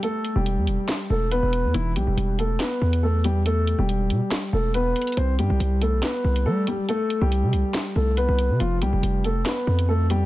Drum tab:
HH |x---x---x---x---x-------x---x---|x---x---x---x---x-----x-----x---|x---x---x---x---x-------x---xxxx|x---x---x---x---x-----x-----x---|
CP |----------------x---------------|----------------x---------------|----------------x---------------|----------------x---------------|
SD |----------------o---------------|----------------o---------------|----------------o---------------|----------------o---------------|

HH |x---x---x---x---x-------x---x---|x---x---x---x---x-----x-----x---|
CP |----------------x---------------|----------------x---------------|
SD |----------------o---------------|----------------o---------------|